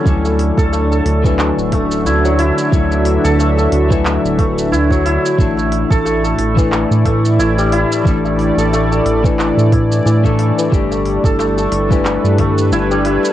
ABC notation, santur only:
X:1
M:4/4
L:1/16
Q:"Swing 16ths" 1/4=90
K:D
V:1 name="Santur"
z A, z A A, A2 E,3 A,2 E F, E z | z A, z A A, A2 E,3 A,2 E F, E z | z A, z A A, A2 E,3 A,2 E G, E z | z A, z A A, A2 E,3 E z E, A, A, E, |
z A, z A A, A2 E,3 A,2 E G, E z |]